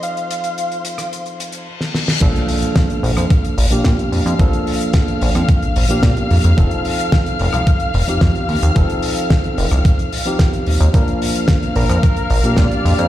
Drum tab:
CC |----------------|x---------------|----------------|----------------|
HH |xxxxxxxxxxxx----|xxoxxxoxxxoxxxox|xxoxxxoxxxoxxxox|xxoxxxoxxxoxxxox|
SD |-------r-----ooo|----o--r----o---|----o--r----o---|----o--r----o---|
BD |----------------|o---o---o---o---|o---o---o---o---|o---o---o---o---|

CC |----------------|----------------|
HH |xxoxxxoxxxoxxxox|xxoxxxoxxxoxxxox|
SD |----o--r----o---|----o--r----o---|
BD |o---o---o---o---|o---o---o---o---|